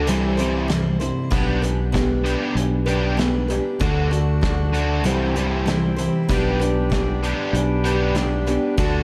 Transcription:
0.06 C2 C3 E3 G3 C4 E4 C5, closed hi-hat
0.37 C3 E3 G3 C4 E4 C5, closed hi-hat
0.68 C3 E3 G3 C4 E4 C5, snare, closed hi-hat
1.00 C3 E3 G3 C4 E4 C5, closed hi-hat
1.31 B1 B3 D4 G4 B4, kick, closed hi-hat
1.62 B3 D4 G4 B4, closed hi-hat
1.92 B3 D4 G4 B4, kick, snare, closed hi-hat
2.24 B3 D4 G4, closed hi-hat
2.55 B1 B3 D4, closed hi-hat
2.86 B3 D4 G4 B4, closed hi-hat
3.17 B3 D4 G4 B4, snare, closed hi-hat
3.48 B3 D4 G4 B4, closed hi-hat
3.80 D2 D3 A3 D4 F#4 A4, kick, closed hi-hat
4.11 D3 D4 F#4 A4, closed hi-hat
4.41 D3 D4 F#4 A4, kick, snare, closed hi-hat
4.73 D3 D4 F#4, closed hi-hat
5.04 C2 C3 E3 G3 C4 E4 G4 C5, closed hi-hat
5.36 C3 E3 G3 C4 E4 C5, closed hi-hat
5.66 C3 E3 G3 C4 E4 C5, snare, closed hi-hat
5.96 C3 E3 G3 C4 E4 C5, closed hi-hat
6.29 B1 B3 D4 G4 B4, kick, closed hi-hat
6.60 B3 D4 G4 B4, closed hi-hat
6.90 B3 D4 G4 B4, kick, snare, closed hi-hat
7.23 B3 D4 G4, closed hi-hat
7.53 B1 B3 D4, closed hi-hat
7.84 B3 D4 G4 B4, closed hi-hat
8.15 B3 D4 G4 B4, snare, closed hi-hat
8.46 B3 D4 G4 B4, closed hi-hat
8.77 D2 D3 A3 D4 F#4 A4, kick, closed hi-hat

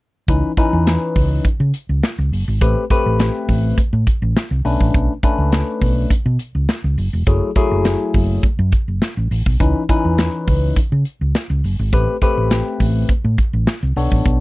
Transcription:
0.28 C#2 E3 C#4 D#4 B4, kick, closed hi-hat
0.57 E3 C#4 D#4 B4, kick, closed hi-hat
0.73 E2
0.87 snare, closed hi-hat
1.16 C#2, kick, open hi-hat
1.45 muted fingered electric bass stroke, kick, closed hi-hat
1.60 C#3
1.74 closed hi-hat
1.89 C#2
2.03 snare, closed hi-hat
2.18 C#2
2.32 F#1, open hi-hat
2.48 G#1
2.61 A1 A3 C4 G4 B4, kick, closed hi-hat
2.90 A3 C4 G4 B4, kick, closed hi-hat
3.06 A1
3.20 snare, closed hi-hat
3.49 A1, kick, open hi-hat
3.78 muted fingered electric bass stroke, kick, closed hi-hat
3.93 A2
4.07 kick, closed hi-hat
4.22 A1
4.37 snare, closed hi-hat
4.51 C2
4.65 B1 A3 C#4 D4 B4, open hi-hat
4.80 A1, kick
4.94 B1, kick, closed hi-hat
5.23 A3 C#4 D4 B4, kick, closed hi-hat
5.38 C#2
5.52 snare, closed hi-hat
5.81 B1, kick, open hi-hat
6.10 muted fingered electric bass stroke, kick, closed hi-hat
6.26 B2
6.39 closed hi-hat
6.55 C#2
6.69 snare, closed hi-hat
6.84 C#2
6.98 F#1, open hi-hat
7.13 E1
7.27 F#1 F#3 A3 E4 G#4, kick, closed hi-hat
7.56 F#3 A3 E4 G#4, kick, closed hi-hat
7.72 F#1
7.85 snare, closed hi-hat
8.14 F#1, kick, open hi-hat
8.43 kick, closed hi-hat
8.59 F#2
8.72 kick, closed hi-hat
8.88 F#1
9.02 snare, closed hi-hat
9.17 A1
9.31 A1, open hi-hat
9.46 B1, kick
9.60 C#2 E3 C#4 D#4 B4, kick, closed hi-hat
9.89 E3 C#4 D#4 B4, kick, closed hi-hat
10.05 E2
10.18 snare, closed hi-hat
10.48 C#2, kick, open hi-hat
10.76 muted fingered electric bass stroke, kick, closed hi-hat
10.92 C#3
11.05 closed hi-hat
11.21 C#2
11.35 snare, closed hi-hat
11.50 C#2
11.64 F#1, open hi-hat
11.79 G#1
11.93 A1 A3 C4 G4 B4, kick, closed hi-hat
12.22 A3 C4 G4 B4, kick, closed hi-hat
12.38 A1
12.51 snare, closed hi-hat
12.80 A1, kick, open hi-hat
13.09 muted fingered electric bass stroke, kick, closed hi-hat
13.24 A2
13.38 kick, closed hi-hat
13.53 A1
13.67 snare, closed hi-hat
13.83 C2
13.96 B1 B3 D4 A4 C#5, open hi-hat
14.12 A1, kick
14.25 B1, kick, closed hi-hat

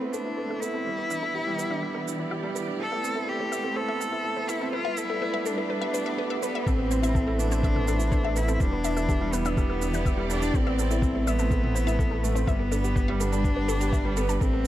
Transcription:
Already playing: A3 C4 E4 A4 B4
0.00 B3 A4
0.12 C4 D4 A4, shaker
0.25 E4
0.37 A4 C5
0.49 A3 E5
0.60 B3 E4 A4, shaker
0.74 C4 A4
0.86 E3 G3
0.98 B3 B4
1.09 D4 E5, shaker
1.23 E4 A4
1.35 G4 A4
1.47 G3
1.58 B3 B4, shaker
1.70 D4 G4 D5 E5
1.83 G3 A4
1.94 B3 A4
2.07 D4, shaker
2.19 E4 B4
2.31 G4 E5
2.43 G3 A4
2.55 B3 A4, shaker
2.67 D4
2.79 A3 A4 C5
2.91 B3 E5
3.03 C4 A4, shaker
3.15 E4 A4
3.27 G4 A4
3.39 A3 C5
3.51 B3 E5, shaker
3.63 C4 A4 B4
3.75 A3 A4 C5
3.87 B3 E5
4.00 C4 A4, shaker
4.12 E4 A4
4.24 A4
4.36 A3 C5
4.49 B3 E4 E5, shaker
4.61 C4 A4
4.72 G3 A3 F4 B4
4.85 B3 E5
4.97 B3 E4 A4 D5, shaker
5.09 E4 A4
5.16 G4
5.21 A3 B4
5.33 B3 E5
5.45 B3 D4 A4, shaker
5.57 E4 A4
5.69 A3 B4
5.81 B3 E5
5.93 A3 B4, shaker
6.05 B3 E5
6.17 A3 B4
6.30 B3 E5
6.42 A3 B3 B4, shaker
6.53 B3 E5
6.66 A1 A3 C4 A4, kick, shaker
6.78 B3 E4
6.90 C4 C5, shaker
7.02 E4 E5, shaker
7.14 A4, kick, shaker
7.27 A3 A4
7.38 B3 D4, shaker
7.50 C4 C5, shaker
7.62 A3 E5, kick, mid tom, shaker
7.75 B3 A4, mid tom
7.87 C4 A4, shaker
7.99 E4, shaker
8.11 A4 C5, kick, shaker
8.23 A3 E5
8.36 B3 E4 A4, shaker
8.48 C4 A4, shaker
8.53 E4
8.60 E1 E3 G3 D4, kick, shaker
8.72 B3 B4
8.84 D4 E5, shaker
8.96 E4 A4, shaker
9.08 G4 A4, kick, shaker
9.21 G3
9.33 B3 B4, shaker
9.45 D4 G4 D5 E5, shaker
9.57 G3 A4, kick, shaker
9.70 B3 A4
9.81 D4, shaker
9.93 E4 B4, shaker
10.06 G4 E5, kick, shaker
10.17 G3 A4
10.30 B3 D4 A4, shaker
10.42 D4, shaker
10.53 A1 A3 C4 C5, kick, shaker
10.66 B3 E5
10.78 C4 A4, shaker
10.91 E4 A4, shaker
11.02 A4, kick, shaker
11.14 A3 C5
11.27 B3 E5, shaker
11.38 C4 A4 B4, shaker
11.51 A3 A4, kick, mid tom, shaker
11.63 B3, mid tom
11.75 C4 C5, shaker
11.87 E4 E5, shaker
11.99 A4, kick, shaker
12.11 A3 A4
12.24 A3 B3, shaker
12.35 C4 C5, shaker
12.47 G1 G3 B3 E5, kick, shaker
12.59 B3 A4
12.72 D4 A4, shaker
12.84 G4, shaker
12.96 B4, kick, shaker
13.06 G3 G4 D5 E5
13.20 B3 D4 A4, shaker
13.32 D4 A4, shaker
13.44 G3, kick, shaker
13.56 B3 B4
13.68 D4 A4, shaker
13.81 G4 A5, shaker
13.93 B4 E5, kick, shaker
14.05 G3
14.17 B3 A4, shaker
14.28 D4 A5, shaker
14.40 A1 A3 C4 A4, kick, shaker
14.53 B3 A4

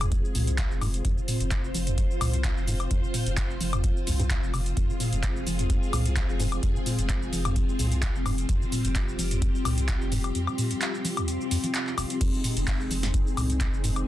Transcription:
Already playing: F1 C4 F4 G#4
0.01 D#2, closed hi-hat, high woodblock, shaker
0.12 F2, kick, closed hi-hat, shaker
0.25 shaker
0.35 C2 A#2, open hi-hat, shaker
0.47 F2, closed hi-hat, shaker
0.58 kick, clap, closed hi-hat, shaker
0.71 F1, shaker
0.81 G#2, open hi-hat, high woodblock, shaker
0.94 closed hi-hat, shaker
1.05 F1 F2 C5, kick, closed hi-hat, shaker
1.17 F3, shaker
1.28 A#2, open hi-hat, shaker
1.40 F1 F2, closed hi-hat, shaker
1.51 kick, clap, closed hi-hat, shaker
1.64 shaker
1.74 F1 F3, open hi-hat, shaker
1.87 D#2, closed hi-hat, shaker
1.98 F2, kick, closed hi-hat, shaker
2.11 shaker
2.21 C2 A#2, open hi-hat, high woodblock, shaker
2.33 F2, closed hi-hat, shaker
2.44 kick, clap, closed hi-hat, shaker
2.57 F1, shaker
2.67 G#2, open hi-hat, shaker
2.80 closed hi-hat, high woodblock, shaker
2.91 F1 F2, kick, closed hi-hat, shaker
3.03 F3, shaker
3.14 A#2, open hi-hat, shaker
3.26 F1 F2, closed hi-hat, shaker
3.37 kick, clap, closed hi-hat, shaker
3.50 shaker
3.60 F1 F3, open hi-hat, shaker
3.73 D#2, closed hi-hat, high woodblock, shaker
3.84 F2, kick, closed hi-hat, shaker
3.97 shaker
4.07 C2 F2, open hi-hat, shaker
4.19 G2, closed hi-hat, shaker
4.30 kick, clap, closed hi-hat, shaker
4.43 F1, shaker
4.54 C3, open hi-hat, high woodblock, shaker
4.66 closed hi-hat, shaker
4.77 F1 F2 G#4, kick, closed hi-hat, shaker
4.89 F3, shaker
5.00 A#2, open hi-hat, shaker
5.13 F1 F2, closed hi-hat, shaker
5.23 kick, clap, closed hi-hat, shaker
5.36 shaker
5.47 F1 F3, open hi-hat, shaker
5.59 D#2, closed hi-hat, shaker
5.70 F2, kick, closed hi-hat, shaker
5.83 shaker
5.93 C2 A#2, open hi-hat, high woodblock, shaker
6.06 F2, closed hi-hat, shaker
6.16 kick, clap, closed hi-hat, shaker
6.29 F1, shaker
6.40 G#2, open hi-hat, shaker
6.52 closed hi-hat, high woodblock, shaker
6.63 F1 F2, kick, closed hi-hat, shaker
6.75 F3, shaker
6.86 A#2, open hi-hat, shaker
6.99 F1 F2, closed hi-hat, shaker
7.09 kick, clap, closed hi-hat, shaker
7.23 shaker
7.33 F1 F3, open hi-hat, shaker
7.45 D#2, closed hi-hat, high woodblock, shaker
7.56 F2, kick, closed hi-hat, shaker
7.69 shaker
7.79 C2 A#2, open hi-hat, shaker
7.92 F2, closed hi-hat, shaker
8.02 kick, clap, closed hi-hat, shaker
8.15 F1, shaker
8.26 G#2, open hi-hat, high woodblock, shaker
8.38 closed hi-hat, shaker
8.49 F1 F2 G4, kick, closed hi-hat, shaker
8.61 F3, shaker
8.72 A#2, open hi-hat, shaker
8.85 F1 F2, closed hi-hat, shaker
8.95 kick, clap, closed hi-hat, shaker
9.09 shaker
9.19 F1 F3, open hi-hat, shaker
9.31 D#2, closed hi-hat, shaker
9.42 F2, kick, closed hi-hat, shaker
9.55 shaker
9.65 C2 A#2, open hi-hat, high woodblock, shaker
9.78 F2, closed hi-hat, shaker
9.88 kick, clap, closed hi-hat, shaker
10.01 F1, shaker
10.12 G#2, open hi-hat, shaker
10.24 closed hi-hat, high woodblock, shaker
10.35 F2, closed hi-hat, shaker
10.47 F3, high woodblock, shaker
10.58 A#2, open hi-hat, shaker
10.71 F2, closed hi-hat, shaker
10.81 clap, closed hi-hat, shaker
10.95 shaker
11.05 F3, open hi-hat, shaker
11.17 D#2, closed hi-hat, high woodblock, shaker
11.28 F2, closed hi-hat, shaker
11.41 shaker
11.51 F2, open hi-hat, shaker
11.64 F3, closed hi-hat, shaker
11.74 clap, closed hi-hat, shaker
11.87 clap, shaker
11.98 F1, open hi-hat, high woodblock, shaker
12.10 closed hi-hat, shaker
12.21 F1 F2 D#4 G#4, kick, closed hi-hat, crash, shaker
12.33 F3, shaker
12.44 A#2, open hi-hat, shaker
12.57 F1 F2, closed hi-hat, shaker
12.67 kick, clap, closed hi-hat, shaker
12.81 shaker
12.91 F1 F3, open hi-hat, shaker
13.03 D#2, snare, closed hi-hat, shaker
13.14 F2, kick, closed hi-hat, shaker
13.27 shaker
13.37 C2 A#2, open hi-hat, high woodblock, shaker
13.50 F2, closed hi-hat, shaker
13.61 kick, clap, closed hi-hat, shaker
13.73 F1, shaker
13.84 G#2, open hi-hat, shaker
13.96 closed hi-hat, high woodblock, shaker

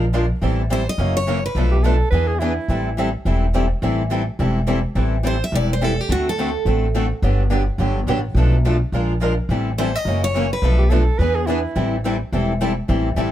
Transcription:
Already playing: A#1
0.13 F3 G#3 D4 F4 A#4
0.42 A1 E3 G3 C4 E4 A4
0.71 E3 G3 C4 E4 A4 C5
0.89 D#5
0.98 F#1 C#3 E3 F#3 A#3 C#4 E4 F#4 A#4
1.17 C#5
1.27 C#3 E3 F#3 A#3 C#4 E4 F#4 A#4
1.46 B4
1.55 B1 B2 F3 A3 D4 A4 B4
1.72 G4
1.83 B2 F3 A3 D4 A4 B4
2.10 E2 E3 B3 D4 G#4 B4
2.28 G#4
2.39 E3 B3 D4 E4 G#4 B4
2.68 A1 E3 G3 C4 E4 A4
2.99 E3 G3 C4 E4 A4
3.25 E1 E3 G3 C4 E4 A4
3.53 E3 G3 C4 E4 A4
3.82 A1 E3 G3 C4 E4 A4
4.10 E3 G3 C4 E4 A4
4.39 E1 E3 G3 C4 E4 A4
4.67 E3 G3 C4 E4 A4
4.95 A1 E3 G3 C4 E4 A4
5.25 E3 G3 C4 E4 A4 C5
5.44 E5
5.52 E1 E3 G3 C4 E4 A4 D5
5.73 C5
5.81 E3 G3 C4 E4 A4
6.01 G4
6.09 D2 D3 A3 C4 F#4 A4
6.29 A4
6.38 D3 A3 C4 F#4 A4
6.65 A1 D3 A3 C4 F#4 A4
6.95 D3 A3 C4 F#4 A4
7.22 G1 D3 F#3 B3 D4 G4
7.51 D3 F#3 B3 D4 G4
7.78 G1 D3 F#3 B3 D4 G4
8.07 A1 D3 F#3 B3 D4 G4
8.35 B1 B2 F3 A3 D4 A4 B4
8.65 B2 F3 A3 D4 A4 B4
8.92 A#1 F3 G#3 D4 F4 A#4
9.20 F3 G#3 D4 F4 A#4
9.49 A1 E3 G3 C4 E4 A4
9.78 E3 G3 C4 E4 A4 C5
9.96 D#5
10.05 F#1 C#3 E3 F#3 A#3 C#4 E4 F#4 A#4
10.24 C#5
10.34 C#3 E3 F#3 A#3 C#4 E4 F#4 A#4
10.53 B4
10.62 B1 B2 F3 A3 D4 A4 B4
10.79 G4
10.90 B2 F3 A3 D4 A4 B4
11.18 E2 E3 B3 D4 G#4 B4
11.35 G#4
11.46 E3 B3 D4 E4 G#4 B4
11.76 A1 E3 G3 C4 E4 A4
12.05 E3 G3 C4 E4 A4
12.32 E1 E3 G3 C4 E4 A4
12.61 E3 G3 C4 E4 A4
12.89 A1 E3 G3 C4 E4 A4
13.16 A1 E3 G3 C4 E4 A4

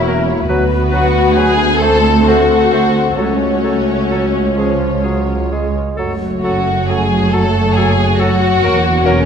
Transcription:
Already playing: E1 E2 A#3 E4 F#4 E5
0.07 F#3 C#4 F#4 A#4
0.28 A#3 E4 C#5
0.47 D2 F#3 B3 F#4 B4
0.90 F#3 F#4 B4 F#5
1.35 F#3 G#4 B4 G#5
1.80 A3 C4 A4 C5 A5
2.26 A3 F#4 C5 F#5
2.72 A3 C5
3.17 C#2 F#3 A3 C#4 F#4 A4 C#5
3.63 F#3 A4
4.10 F#3 A4
4.56 F3 G#3 F4 G#4 C#5
5.03 F#3 G#4
5.51 G#3 G#4
5.96 F#1 F#2 F#3 A3 F#4 A4 C#5
6.43 F#3 F#4 A4 F#5
6.89 F#3 G#4 A4 G#5
7.31 F#3 A4 A5
7.74 G#4 A4 G#5
7.78 F#3
8.19 F#3 F#4 A4 F#5
8.63 E1 E2 F#3 A#3 A#4
9.06 F#3 C#4 A#4 C#5

